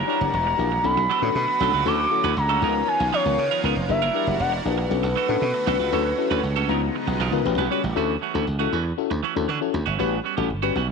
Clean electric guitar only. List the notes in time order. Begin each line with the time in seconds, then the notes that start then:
0.08 G3 D4 E4 A#4
0.21 muted clean electric guitar stroke
0.34 muted clean electric guitar stroke
0.47 muted clean electric guitar stroke
0.72 muted clean electric guitar stroke
0.97 muted clean electric guitar stroke
1.10 F#3 B3 D4 A4
1.23 muted clean electric guitar stroke
1.35 muted clean electric guitar stroke
1.48 muted clean electric guitar stroke
1.61 F#3 B3 D4 A4
1.74 F#3 B3 D4 B4
1.86 A3 C#4 F#4 A4
2.24 A3 C#4 F#4 B4
2.37 muted clean electric guitar stroke
2.49 A3 C#4 F#4 A4
2.62 F3 B3 D#4 A#4
2.75 muted clean electric guitar stroke
2.88 muted clean electric guitar stroke
3.00 muted clean electric guitar stroke
3.13 F3 B3 D#4 A#4
3.26 muted clean electric guitar stroke
3.38 muted clean electric guitar stroke
3.51 F3 B3 D#4 A#4
3.64 F3 B3 D#4 A#4
3.77 muted clean electric guitar stroke
3.89 muted clean electric guitar stroke
4.02 G3 D4 E4 A#4
4.15 G3 D4 E4 A#4
4.28 muted clean electric guitar stroke
4.40 muted clean electric guitar stroke
4.52 muted clean electric guitar stroke
4.78 muted clean electric guitar stroke
5.03 muted clean electric guitar stroke
5.16 A3 D4 F#4 A4
5.29 muted clean electric guitar stroke
5.42 muted clean electric guitar stroke
5.54 muted clean electric guitar stroke
5.67 A3 D4 F#4 A4
5.79 A3 D4 F#4 B4
5.92 A3 C#4 F#4 A4
6.18 muted clean electric guitar stroke
6.31 A3 C#4 F#4 B4
6.56 A3 C#4 F#4 A4
6.69 F3 B3 D#4 A#4
6.82 muted clean electric guitar stroke
6.95 muted clean electric guitar stroke
7.08 muted clean electric guitar stroke
7.20 F3 B3 D#4 A#4
7.33 muted clean electric guitar stroke
7.45 muted clean electric guitar stroke
7.58 G3 C#4 F#4 B4
7.70 G3 C#4 F#4 B4
7.83 muted clean electric guitar stroke
7.96 E3 A3 C#4 F#4
8.21 E3 A3 C#4 F#4
8.34 E3 A3 C#4 F#4
8.59 E3 A3 C#4 F#4
8.72 E3 A3 C#4 F#4
8.85 muted clean electric guitar stroke
9.10 muted clean electric guitar stroke
9.23 E3 A3 C#4 F#4
9.35 muted clean electric guitar stroke
9.48 E3 A3 C#4 F#4
9.61 muted clean electric guitar stroke
9.73 muted clean electric guitar stroke
9.86 E3 A3 C#4 F#4
9.98 G3 B3 C#4 F#4
10.24 G3 B3 C#4 F#4
10.37 G3 B3 C#4 G4
10.50 muted clean electric guitar stroke
10.62 G3 B3 C#4 F#4
10.75 G3 B3 C#4 F#4
10.88 muted clean electric guitar stroke